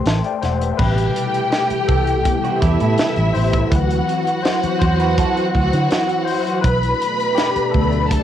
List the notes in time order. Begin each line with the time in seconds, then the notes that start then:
Already playing: G5 C6
0.06 A1 E5 A5, snare, closed hi-hat
0.24 D5 G5, closed hi-hat
0.42 E1 C5 F#5, snare, closed hi-hat
0.61 B4 E5, closed hi-hat
0.77 A1 B2 C3 E3 G3 A3 G4 B4 G5, kick, crash
0.98 closed hi-hat
1.16 closed hi-hat
1.34 closed hi-hat
1.50 G4, snare, closed hi-hat
1.70 muted fingered electric bass stroke, closed hi-hat
1.87 C2 A4, kick, closed hi-hat
2.07 closed hi-hat
2.25 C3 G3 B3, kick, closed hi-hat
2.44 C4 F#4, closed hi-hat
2.61 E2 D4 E4 G4 E5, kick, closed hi-hat
2.80 A2 E4 A4, closed hi-hat
2.98 snare, closed hi-hat
3.16 A1, closed hi-hat
3.34 A1 C5, open hi-hat
3.53 kick, closed hi-hat
3.70 D2 E3 F#3 C4 E4 F#4 B4 F#5, kick, closed hi-hat
3.90 closed hi-hat
4.09 closed hi-hat
4.27 closed hi-hat
4.42 C5, snare, closed hi-hat
4.63 muted fingered electric bass stroke, closed hi-hat
4.79 E2 C5, kick, closed hi-hat
5.00 F#4 B4, closed hi-hat
5.18 E4 A4, kick, closed hi-hat
5.36 C4 F#4, closed hi-hat
5.55 D2, kick, closed hi-hat
5.73 D3, closed hi-hat
5.90 snare, closed hi-hat
6.09 closed hi-hat
6.25 C5, open hi-hat
6.47 closed hi-hat
6.61 B1 B2 A3 D4 B4 B5, kick, closed hi-hat
6.83 closed hi-hat
7.02 closed hi-hat
7.20 closed hi-hat
7.35 G4, snare, closed hi-hat
7.56 muted fingered electric bass stroke, closed hi-hat
7.71 D2 D3 F#3 A3 A4, kick, closed hi-hat
7.92 closed hi-hat
8.11 A4 A5, kick, closed hi-hat